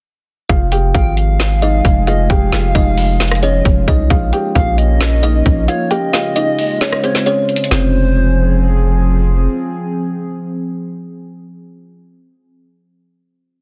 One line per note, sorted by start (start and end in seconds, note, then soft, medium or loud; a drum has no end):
0.49 0.93 F1 loud
0.49 5.87 F3 medium
0.49 4.07 G#3 medium
0.49 0.70 F4 medium
0.49 4.07 G#4 medium
0.49 0.70 F5 medium
0.49 kick loud
0.49 closed hi-hat medium
0.72 0.93 G4 medium
0.72 0.92 G5 medium
0.72 closed hi-hat medium
0.94 1.81 G#1 loud
0.94 1.37 F4 medium
0.94 1.37 F5 loud
0.94 1.16 G5 medium
0.94 kick loud
0.94 closed hi-hat medium
1.17 2.03 F5 medium
1.17 closed hi-hat medium
1.40 snare loud
1.40 closed hi-hat medium
1.62 2.05 D#4 medium
1.62 2.05 D#5 medium
1.62 closed hi-hat medium
1.85 2.28 F1 loud
1.85 kick loud
1.85 closed hi-hat medium
2.07 2.28 F4 medium
2.07 2.29 D#5 medium
2.07 2.28 F5 medium
2.07 closed hi-hat medium
2.30 2.52 F1 loud
2.30 2.51 G4 medium
2.30 3.39 F5 loud
2.30 2.50 G5 loud
2.30 kick loud
2.30 closed hi-hat medium
2.52 2.74 F1 loud
2.52 2.73 F4 medium
2.52 2.73 F5 medium
2.52 snare loud
2.75 3.62 F1 loud
2.75 3.18 D#4 medium
2.75 3.17 D#5 medium
2.75 kick medium
2.75 closed hi-hat medium
2.98 open hi-hat medium
3.20 snare loud
3.20 closed hi-hat soft
3.28 cross-stick loud
3.28 closed hi-hat medium
3.35 closed hi-hat medium
3.43 3.86 C#4 medium
3.43 3.85 C#5 medium
3.43 3.64 D#5 medium
3.43 closed hi-hat medium
3.65 3.87 F1 loud
3.65 kick loud
3.65 closed hi-hat medium
3.88 4.09 C2 loud
3.88 4.09 D#4 medium
3.88 4.08 D#5 medium
3.88 kick loud
3.88 closed hi-hat medium
4.10 4.32 A#1 loud
4.10 5.89 A#3 medium
4.10 5.89 C#4 loud
4.10 4.31 F4 medium
4.10 4.31 F5 loud
4.10 kick loud
4.10 closed hi-hat medium
4.33 4.54 G4 medium
4.33 4.53 G5 medium
4.33 closed hi-hat medium
4.55 5.42 A#1 loud
4.55 4.98 F4 medium
4.55 4.98 F5 medium
4.55 4.77 F5 medium
4.55 kick medium
4.55 closed hi-hat medium
4.78 5.64 D#5 loud
4.78 closed hi-hat medium
5.00 snare loud
5.00 closed hi-hat medium
5.23 5.66 D#4 medium
5.23 5.65 D#5 medium
5.23 closed hi-hat medium
5.46 5.67 A#1 loud
5.46 kick loud
5.46 closed hi-hat medium
5.68 5.89 F4 medium
5.68 5.90 C#5 medium
5.68 5.89 F5 medium
5.68 closed hi-hat medium
5.91 7.69 C#3 medium
5.91 7.69 G#3 medium
5.91 7.69 F4 medium
5.91 6.12 G4 medium
5.91 7.00 D#5 loud
5.91 6.11 G5 loud
5.91 closed hi-hat medium
6.13 6.34 F4 medium
6.13 6.34 F5 medium
6.13 snare loud
6.36 6.79 D#4 medium
6.36 6.78 D#5 medium
6.36 closed hi-hat medium
6.59 open hi-hat medium
6.81 7.02 C#4 medium
6.81 7.01 C#5 medium
6.81 snare loud
6.81 closed hi-hat medium
6.92 cross-stick loud
7.04 7.24 C4 medium
7.04 7.24 C5 medium
7.04 7.25 C#5 medium
7.04 closed hi-hat medium
7.15 snare medium
7.26 7.69 C#4 medium
7.26 7.69 C#5 medium
7.26 closed hi-hat medium
7.49 closed hi-hat medium
7.56 closed hi-hat medium
7.64 closed hi-hat medium
7.71 9.48 F1 loud
7.71 11.90 F3 medium
7.71 9.03 C4 medium
7.71 11.90 C4 medium
7.71 11.90 G#4 loud
7.71 9.03 C5 loud
7.71 snare loud